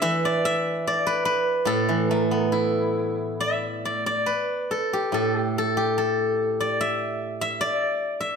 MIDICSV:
0, 0, Header, 1, 2, 480
1, 0, Start_track
1, 0, Tempo, 819672
1, 23, Time_signature, 2, 2, 24, 8
1, 984, Tempo, 860832
1, 3384, Tempo, 807537
1, 4797, End_track
2, 0, Start_track
2, 0, Title_t, "Guzheng"
2, 0, Program_c, 0, 107
2, 0, Note_on_c, 0, 74, 79
2, 9, Note_on_c, 0, 52, 61
2, 12, Note_on_c, 0, 76, 110
2, 145, Note_off_c, 0, 74, 0
2, 147, Note_on_c, 0, 74, 87
2, 262, Note_off_c, 0, 76, 0
2, 264, Note_on_c, 0, 76, 102
2, 510, Note_off_c, 0, 74, 0
2, 512, Note_on_c, 0, 74, 89
2, 624, Note_on_c, 0, 71, 80
2, 732, Note_off_c, 0, 71, 0
2, 734, Note_on_c, 0, 71, 95
2, 969, Note_on_c, 0, 45, 67
2, 977, Note_on_c, 0, 69, 89
2, 1092, Note_off_c, 0, 52, 0
2, 1099, Note_on_c, 0, 52, 52
2, 1222, Note_on_c, 0, 57, 60
2, 1228, Note_off_c, 0, 69, 0
2, 1228, Note_on_c, 0, 70, 89
2, 1259, Note_off_c, 0, 76, 0
2, 1295, Note_off_c, 0, 70, 0
2, 1295, Note_on_c, 0, 69, 89
2, 1337, Note_on_c, 0, 59, 51
2, 1368, Note_off_c, 0, 69, 0
2, 1368, Note_on_c, 0, 70, 89
2, 1435, Note_off_c, 0, 70, 0
2, 1435, Note_on_c, 0, 69, 89
2, 1453, Note_on_c, 0, 64, 56
2, 1565, Note_off_c, 0, 74, 0
2, 1887, Note_off_c, 0, 71, 0
2, 1945, Note_on_c, 0, 76, 83
2, 2072, Note_off_c, 0, 52, 0
2, 2196, Note_on_c, 0, 74, 67
2, 2197, Note_off_c, 0, 57, 0
2, 2202, Note_off_c, 0, 69, 0
2, 2311, Note_off_c, 0, 74, 0
2, 2313, Note_on_c, 0, 74, 76
2, 2315, Note_off_c, 0, 59, 0
2, 2424, Note_on_c, 0, 71, 66
2, 2429, Note_off_c, 0, 45, 0
2, 2433, Note_off_c, 0, 64, 0
2, 2673, Note_on_c, 0, 69, 61
2, 2798, Note_on_c, 0, 67, 61
2, 2902, Note_on_c, 0, 45, 48
2, 2906, Note_off_c, 0, 76, 0
2, 2912, Note_off_c, 0, 69, 0
2, 2914, Note_on_c, 0, 69, 71
2, 3053, Note_off_c, 0, 67, 0
2, 3053, Note_off_c, 0, 69, 0
2, 3053, Note_on_c, 0, 67, 71
2, 3157, Note_off_c, 0, 67, 0
2, 3159, Note_on_c, 0, 69, 69
2, 3264, Note_on_c, 0, 67, 68
2, 3343, Note_off_c, 0, 74, 0
2, 3378, Note_off_c, 0, 69, 0
2, 3380, Note_on_c, 0, 69, 71
2, 3577, Note_off_c, 0, 71, 0
2, 3752, Note_on_c, 0, 74, 71
2, 3872, Note_on_c, 0, 76, 84
2, 4231, Note_off_c, 0, 76, 0
2, 4233, Note_on_c, 0, 76, 88
2, 4344, Note_off_c, 0, 45, 0
2, 4346, Note_off_c, 0, 74, 0
2, 4349, Note_on_c, 0, 74, 84
2, 4657, Note_off_c, 0, 67, 0
2, 4685, Note_off_c, 0, 69, 0
2, 4701, Note_off_c, 0, 76, 0
2, 4704, Note_on_c, 0, 76, 70
2, 4797, Note_off_c, 0, 74, 0
2, 4797, Note_off_c, 0, 76, 0
2, 4797, End_track
0, 0, End_of_file